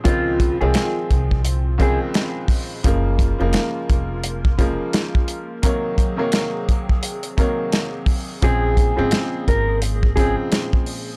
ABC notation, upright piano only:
X:1
M:4/4
L:1/16
Q:"Swing 16ths" 1/4=86
K:Bbm
V:1 name="Upright piano" clef=bass
[D,,E,F,A,C]3 [E,F,A,C]6 z [D,,E,F,A,C]6 | [D,F,A,B,]3 [D,F,A,B,]6 z [D,F,A,B,]6 | [C,E,G,B,]3 [C,E,G,B,]6 z [C,E,G,B,]6 | [D,F,A,C]3 [D,F,A,C]6 z [D,F,A,C]6 |]